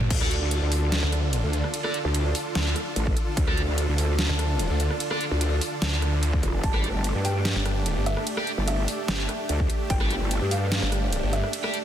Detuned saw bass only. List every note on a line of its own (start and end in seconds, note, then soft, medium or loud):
1.03 1.42 D2 loud
1.44 1.62 D2 loud
2.55 2.74 D2 loud
4.29 4.68 D2 loud
4.70 4.89 D2 loud
5.82 6.42 D2 loud
7.56 7.95 G1 medium
7.97 8.15 G1 loud
9.08 9.27 G1 loud
10.82 11.21 G1 loud
11.23 11.42 G1 loud